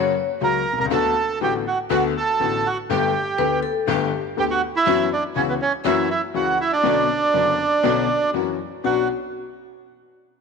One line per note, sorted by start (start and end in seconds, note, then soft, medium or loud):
0.00 0.12 F#2 medium
0.00 0.12 C#3 medium
0.00 0.12 F#3 medium
0.00 0.12 A#3 medium
0.00 0.12 C#4 medium
0.00 0.12 F#4 medium
0.00 0.26 C#5 medium
0.40 0.62 C#2 medium
0.40 0.62 C#3 medium
0.40 0.62 F#3 soft
0.40 0.62 A#3 soft
0.40 0.62 C#4 soft
0.40 0.62 F#4 medium
0.40 0.79 A#4 loud
0.73 0.79 B1 soft
0.79 0.85 C2 medium
0.79 0.86 A#4 medium
0.85 0.91 C#2 medium
0.90 1.12 D2 medium
0.90 1.12 D3 medium
0.90 1.12 A3 medium
0.90 1.12 B3 medium
0.90 1.12 D4 medium
0.90 1.12 F#4 medium
0.90 1.39 A4 loud
1.41 1.62 A1 medium
1.41 1.62 A2 medium
1.41 1.62 D3 medium
1.41 1.62 A3 soft
1.41 1.62 B3 medium
1.41 1.62 B3 soft
1.41 1.62 D4 soft
1.41 1.62 F#4 medium
1.41 1.54 G4 medium
1.67 1.78 F#4 medium
1.90 2.11 D2 medium
1.90 2.11 D3 medium
1.90 2.11 A3 medium
1.90 2.11 B3 medium
1.90 2.11 D4 medium
1.90 2.12 F#4 medium
1.90 2.03 F#4 medium
2.17 2.67 A4 loud
2.40 2.61 A1 medium
2.40 2.61 A2 medium
2.40 2.61 D3 soft
2.40 2.61 A3 soft
2.40 2.61 B3 soft
2.40 2.61 D4 soft
2.40 2.61 F#4 medium
2.67 2.77 F#4 medium
2.90 3.10 G1 medium
2.90 3.11 G2 medium
2.90 3.11 D3 medium
2.90 3.11 A3 medium
2.90 3.11 B3 medium
2.90 3.11 G4 medium
2.90 3.60 G4 medium
3.38 3.59 D2 medium
3.38 3.59 D3 medium
3.38 3.59 A3 soft
3.38 3.59 A3 medium
3.38 3.59 B3 soft
3.38 3.59 B3 medium
3.38 3.59 G4 medium
3.38 3.60 G4 medium
3.38 3.64 B4 loud
3.63 3.88 A4 medium
3.87 4.08 G1 medium
3.87 4.08 G2 medium
3.87 4.08 D3 medium
3.87 4.08 A3 medium
3.87 4.08 B3 medium
3.87 4.09 B3 medium
3.87 4.08 G4 medium
3.87 4.22 G4 medium
3.87 4.09 G4 medium
4.37 4.58 D2 medium
4.37 4.58 D3 medium
4.37 4.58 A3 soft
4.37 4.58 A3 medium
4.37 4.58 B3 soft
4.37 4.58 B3 medium
4.37 4.58 G4 medium
4.37 4.44 G4 loud
4.51 4.61 F#4 loud
4.76 5.09 E4 loud
4.86 5.07 F#2 medium
4.86 5.07 E3 medium
4.86 5.07 F#3 medium
4.86 5.07 B3 medium
4.86 5.07 C#4 medium
4.86 5.07 E4 medium
4.86 5.07 F#4 medium
5.13 5.24 D4 medium
5.35 5.56 C#2 medium
5.35 5.57 C#3 medium
5.35 5.56 E3 medium
5.35 5.56 B3 medium
5.35 5.57 B3 soft
5.35 5.56 C#4 soft
5.35 5.42 C#4 medium
5.35 5.56 E4 medium
5.35 5.56 F#4 medium
5.35 5.57 F#4 medium
5.49 5.54 B3 medium
5.62 5.72 C#4 medium
5.84 6.06 F#2 medium
5.84 6.05 E3 medium
5.84 6.06 F#3 medium
5.84 6.05 A#3 medium
5.84 6.06 A#3 medium
5.84 6.06 C#4 medium
5.84 6.05 E4 medium
5.84 6.09 E4 medium
5.84 6.06 F#4 medium
6.11 6.22 E4 medium
6.34 6.55 C#2 medium
6.34 6.55 C#3 medium
6.34 6.55 E3 soft
6.34 6.55 A#3 soft
6.34 6.55 A#3 medium
6.34 6.55 C#4 soft
6.34 6.55 E4 soft
6.34 6.55 F#4 medium
6.34 6.58 F#4 medium
6.61 6.71 E4 medium
6.73 8.30 D4 medium
6.83 7.05 B1 medium
6.83 7.05 B2 medium
6.83 7.05 D3 medium
6.83 7.05 B3 medium
6.83 7.05 C#4 medium
6.83 7.05 D4 medium
6.83 7.05 F#4 medium
7.33 7.55 F#1 medium
7.33 7.55 F#2 medium
7.33 7.55 D3 medium
7.33 7.54 B3 medium
7.33 7.54 B3 soft
7.33 7.55 C#4 medium
7.33 7.55 C#4 soft
7.33 7.55 D4 medium
7.33 7.55 F#4 medium
7.83 8.05 B1 medium
7.83 8.04 B2 medium
7.83 8.04 D3 medium
7.83 8.04 B3 medium
7.83 8.05 B3 medium
7.83 8.05 C#4 medium
7.83 8.05 D4 medium
7.83 8.05 F#4 medium
8.33 8.55 F#2 medium
8.33 8.55 E3 soft
8.33 8.55 F#3 soft
8.33 8.55 A#3 medium
8.33 8.55 A#3 soft
8.33 8.55 C#4 soft
8.33 8.55 E4 soft
8.33 8.55 F#4 soft
8.33 8.55 F#4 medium
8.84 9.05 B1 medium
8.84 9.05 B3 medium
8.84 9.05 B3 soft
8.84 9.05 C#4 soft
8.84 9.05 D4 medium
8.84 9.08 F#4 medium